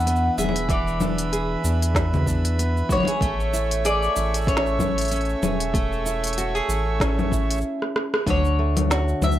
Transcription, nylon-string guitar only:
0.00 0.70 E3 medium
0.00 1.00 D4 medium
0.07 1.94 B3 medium
0.39 1.32 G#4 medium
0.70 3.21 E3 medium
1.01 1.63 D4 medium
1.32 2.89 G#4 medium
1.64 2.26 D4 medium
1.95 2.58 B3 medium
2.27 3.29 D4 medium
2.59 3.29 B3 medium
2.90 3.08 F#4 medium
3.08 3.29 G#4 medium
3.22 5.74 A3 medium
3.53 4.16 E4 medium
3.85 5.42 G#4 medium
4.16 4.79 E4 medium
4.48 5.11 C#4 medium
4.80 6.05 E4 medium
5.11 7.00 C#4 medium
5.43 6.37 G#4 medium
5.74 8.14 A3 medium
6.06 6.68 E4 medium
6.38 6.55 F#4 medium
6.55 7.64 G#4 medium
6.69 7.31 E4 medium
7.01 8.14 C#4 medium
7.32 8.13 E4 medium
8.27 9.39 D3 medium
8.59 9.39 A3 medium
8.90 9.39 F#4 medium

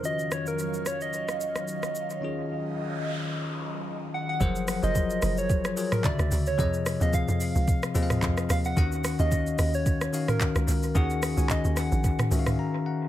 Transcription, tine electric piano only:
0.03 2.18 D#3 medium
0.03 2.18 C#4 medium
0.03 2.19 F4 medium
0.03 2.19 F#4 medium
2.21 4.36 D#3 medium
2.21 4.36 C#4 medium
2.21 4.37 F4 medium
2.21 4.38 G#4 medium
4.40 4.74 F3 medium
4.40 4.74 F#3 loud
4.40 4.74 G#4 medium
4.40 4.74 A#4 medium
4.40 4.74 C5 loud
4.82 5.58 F#3 medium
4.82 5.58 F4 medium
4.82 5.59 G#4 medium
4.82 5.59 A#4 medium
4.82 5.59 C5 medium
5.76 6.04 F#3 medium
5.76 6.04 F4 medium
5.76 6.04 G#4 medium
5.76 6.05 A#4 medium
5.76 6.05 C#5 medium
6.04 6.49 C#3 medium
6.04 6.49 D3 medium
6.04 6.49 F#4 medium
6.04 6.49 E5 medium
6.58 6.92 C3 medium
6.58 6.92 F3 medium
6.58 6.92 G#4 medium
6.58 6.93 D#5 loud
7.00 7.76 F3 medium
7.00 7.77 C4 medium
7.00 7.77 G#4 medium
7.00 7.77 F5 medium
7.94 8.61 F3 medium
7.94 8.62 C4 medium
7.94 8.62 G#4 medium
7.94 8.03 D#5 medium
8.03 8.65 F5 loud
8.76 9.10 D#3 loud
8.76 9.10 C#4 medium
8.76 9.10 F#4 medium
8.76 9.11 F#5 loud
9.19 9.95 D#3 medium
9.19 9.95 C#4 medium
9.19 9.95 F#4 medium
9.19 9.96 F5 medium
10.13 10.79 D#3 medium
10.13 10.80 C#4 medium
10.13 10.80 F#4 medium
10.13 10.80 F5 medium
10.94 11.28 D#3 medium
10.94 11.28 C#4 medium
10.94 11.29 F#4 medium
10.94 11.29 G#4 loud
11.37 12.13 D#3 medium
11.37 12.13 C#4 medium
11.37 12.13 F#4 medium
11.37 12.14 G#5 medium
12.31 12.98 D#3 medium
12.31 12.98 C#4 medium
12.31 12.98 F#4 medium
12.31 12.39 E5 medium
12.39 13.02 F5 medium
12.59 12.84 A#5 medium
12.86 13.09 F#5 medium

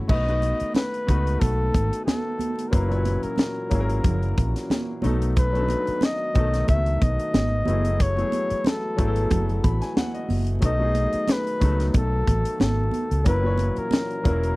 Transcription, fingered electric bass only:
0.09 0.52 B1 medium
0.61 muted fingered electric bass stroke soft
1.09 1.36 C#2 medium
1.42 1.69 B1 loud
1.75 1.89 G#1 medium
2.73 3.16 F#1 loud
3.24 muted fingered electric bass stroke soft
3.72 3.99 G#1 medium
4.04 4.32 F#1 loud
4.38 4.53 A#1 medium
5.04 5.74 B1 medium
5.88 muted fingered electric bass stroke soft
6.36 6.63 B1 medium
6.69 6.96 C#2 medium
7.02 7.16 B1 medium
7.34 7.62 G#1 medium
7.67 8.22 F#1 medium
8.51 muted fingered electric bass stroke soft
8.99 9.26 G#1 medium
9.31 9.59 F#1 medium
9.64 9.79 A1 medium
10.30 10.58 F#1 medium
10.63 11.05 B1 loud
11.14 muted fingered electric bass stroke soft
11.62 11.89 C#2 medium
11.95 12.22 B1 loud
12.28 12.43 A1 loud
12.61 12.88 G#1 medium
13.11 13.24 C#2 medium
13.26 13.69 F#1 loud
13.78 muted fingered electric bass stroke soft
14.25 14.53 E1 medium

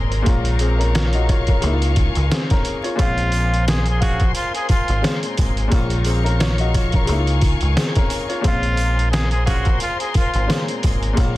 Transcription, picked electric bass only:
0.00 0.22 G#1 medium
0.27 1.59 A#1 loud
1.63 2.09 C#2 loud
2.17 2.29 C#2 medium
2.99 4.32 A#1 loud
4.89 5.02 G#1 medium
5.39 5.68 G#1 medium
5.72 7.04 A#1 loud
7.09 7.54 C#2 loud
7.62 7.75 C#2 medium
8.45 9.77 A#1 loud
10.35 10.47 G#1 medium
10.84 11.13 G#1 medium
11.18 11.37 A#1 loud

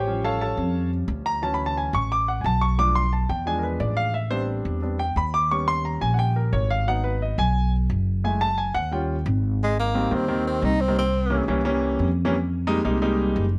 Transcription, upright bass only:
0.00 0.52 A1 medium
0.57 1.05 F2 medium
1.08 1.87 D2 medium
1.93 2.41 A1 medium
2.44 3.24 B1 medium
3.29 3.77 E2 medium
3.80 4.60 A1 loud
4.65 5.13 E2 medium
5.16 5.96 D#2 medium
6.01 6.49 A#1 medium
6.53 7.32 G#1 medium
7.38 7.86 B1 loud
7.90 8.69 F#1 loud
8.75 9.22 D#2 loud
9.26 10.05 G#1 loud
10.11 10.59 D#2 medium
10.62 11.42 C2 medium
11.48 11.96 C2 medium
11.99 12.79 F2 medium
12.85 13.33 C2 medium
13.36 13.59 F#1 loud

